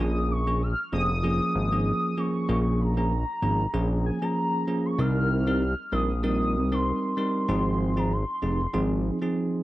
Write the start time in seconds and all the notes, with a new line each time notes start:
0.00 A#1 F3 A#3 C#4 G#4 D#6
0.31 C#6
0.47 F3 A#3 C#4 G#4
0.62 F6
0.92 F1 F3 A#3 C#4 G#4 D#6
1.23 F3 A#3 C#4 G#4
1.55 G#1
1.72 F3 A#3 C#4 G#4
2.17 F3 A#3 C#4 G#4 C#6
2.49 A#1 F3 A#3 C#4 G#4
2.81 A#5
2.97 F3 A#3 C#4 G#4
3.42 G#1 F3 A#3 C#4 G#4
3.73 A#1 F3 A#3 C#4 G#4
4.06 G#5
4.22 F3 A#3 C#4 G#4 A#5
4.67 F3 A#3 C#4 G#4
4.86 C#6
4.98 C2 G3 C4 D#4 A#4 F6
5.47 G3 C4 D#4 A#4
5.92 A#1 G3 C4 D#4 A#4 D#6
6.23 G3 C4 D#4 A#4 D#6
6.55 C2
6.72 G3 C4 D#4 A#4 C6
7.17 G3 C4 D#4 A#4 C6
7.49 G#1 F3 C4 D#4 G#4
7.97 F3 C4 D#4 G#4 A#5
8.13 C6
8.42 F1 F3 C4 D#4 G#4
8.73 G#1 F3 C4 D#4 G#4
9.22 F3 C4 D#4 G#4